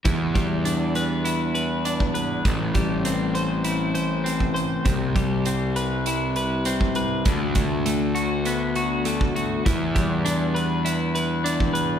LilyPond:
<<
  \new Staff \with { instrumentName = "Clean electric guitar" } { \time 4/4 \key e \minor \tempo 4 = 100 e8 g8 d'8 b'8 e'8 b'8 d'8 b'8 | a,8 g8 c'8 c''8 e'8 c''8 c'8 c''8 | c8 g8 c'8 b'8 e'8 b'8 c'8 b'8 | d8 d8 a8 fis'8 b8 fis'8 a8 fis'8 |
e8 g8 d'8 b'8 e'8 b'8 d'8 b'8 | }
  \new Staff \with { instrumentName = "Picked electric bass" } { \clef bass \time 4/4 \key e \minor e,1 | a,,1 | c,1 | d,1 |
e,1 | }
  \new DrumStaff \with { instrumentName = "Drums" } \drummode { \time 4/4 <hh bd>8 <hh bd>8 hh8 hh8 hh8 hh8 hh16 bd16 hh8 | <hh bd>8 <hh bd>8 hh8 hh8 hh8 hh8 hh16 bd16 hh8 | <hh bd>8 <hh bd>8 hh8 hh8 hh8 hh8 hh16 bd16 hh8 | <hh bd>8 <hh bd>8 hh8 hh8 hh8 hh8 hh16 bd16 hh8 |
<hh bd>8 <hh bd>8 hh8 hh8 hh8 hh8 hh16 bd16 hh8 | }
>>